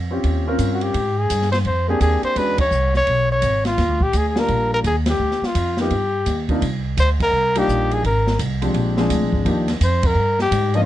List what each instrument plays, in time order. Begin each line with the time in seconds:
Already playing: upright bass F2
0.11 grand piano C4 C#4 F4 G4
0.24 upright bass D#2, kick, ride
0.47 grand piano C4 C#4 F4 A#4
0.58 upright bass G2, kick, hi-hat pedal, ride
0.74 trumpet F#4
0.81 trumpet G4, ride
0.94 upright bass G#2, kick, ride
1.18 trumpet G#4
1.30 upright bass G2, kick, hi-hat pedal, ride
1.42 snare
1.52 trumpet C5, snare, ride
1.65 upright bass F2, trumpet C5, kick, ride
1.88 grand piano A#3 C4 D4 G4, trumpet G#4
2.01 upright bass D#2, trumpet G#4, kick, hi-hat pedal, ride
2.23 trumpet C5, muted upright bass stroke, ride
2.36 upright bass E2, grand piano G#3 C#4 D4 F#4, trumpet B4, kick, ride
2.58 trumpet C#5, kick, ride
2.71 upright bass C2, hi-hat pedal
2.94 trumpet C#5, snare
3.07 upright bass B1, kick, ride
3.32 trumpet C#5
3.42 upright bass G#1, kick, hi-hat pedal, ride
3.65 trumpet F4, snare, ride
3.78 upright bass D#2, kick, snare, ride
3.88 upright bass D2
4.00 upright bass A#1, trumpet G4, kick
4.13 upright bass D2, trumpet G#4, kick, hi-hat pedal, ride
4.29 trumpet G#4
4.36 grand piano G3 A#3 D4 F4, trumpet A#4, snare
4.48 upright bass A#1, kick, ride
4.74 trumpet A#4
4.84 upright bass D#2, trumpet G#4, kick, hi-hat pedal, ride
5.06 trumpet G4, snare, ride
5.19 upright bass D2
5.31 snare
5.42 muted upright bass stroke, snare
5.46 trumpet F4
5.55 upright bass F2, kick, hi-hat pedal, ride
5.77 grand piano A#3 B3 D#4 F4, trumpet G4, snare
5.90 upright bass G2, kick, ride
6.26 upright bass D#2, kick, hi-hat pedal, ride
6.49 grand piano C3 A#3 D4 D#4 F4, kick, ride
6.62 upright bass C2, kick, ride
6.97 upright bass D2, trumpet C5, kick, hi-hat pedal, ride
7.20 trumpet A#4, kick, ride
7.31 upright bass C2
7.55 grand piano G3 A#3 D4 D#4 F4, trumpet G4, ride
7.68 upright bass A#1, kick, hi-hat pedal
7.91 trumpet G#4, ride
8.04 upright bass G#1, trumpet A#4, kick, ride
8.27 snare
8.39 upright bass C2, kick, hi-hat pedal, ride
8.62 grand piano F3 G#3 C4 D4 G4, ride
8.74 upright bass A#1, kick, ride
8.97 grand piano F3 G#3 C4 D4 G#4, snare
9.10 upright bass D2, kick, hi-hat pedal, ride
9.21 upright bass A#1
9.32 upright bass G#1, kick
9.45 upright bass D#2, grand piano F3 A#3 D4 D#4 G4, kick, ride
9.68 snare, ride
9.80 upright bass F2, trumpet C5, kick, hi-hat pedal, ride
10.03 trumpet A#4, kick, ride
10.15 upright bass G2
10.39 trumpet G4, snare
10.51 upright bass G#2, kick, hi-hat pedal, ride
10.74 grand piano F3 A#3 C#4 D4 F4, trumpet D#5, ride